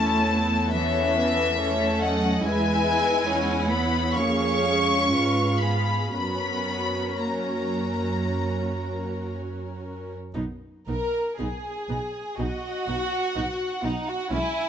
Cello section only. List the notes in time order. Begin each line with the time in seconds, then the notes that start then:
Already playing: A3
0.74 E3
2.02 F#3
2.45 G#3
3.71 B3
4.16 C#4
5.61 B3
6.13 B3
7.21 A#3
10.36 B2
10.88 B2
11.39 B2
11.89 B2
12.38 B2
12.88 B2
13.35 B2
13.83 B2
14.31 B2